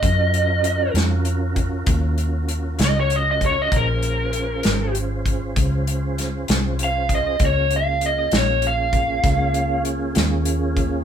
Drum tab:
HH |xxxxxxxxxxxx|xxxxxxxxxxxx|xxxxxxxxxxxx|
SD |---o-----o--|---o----oo--|---o--o--o--|
BD |o----oo----o|o----oo----o|o----oo----o|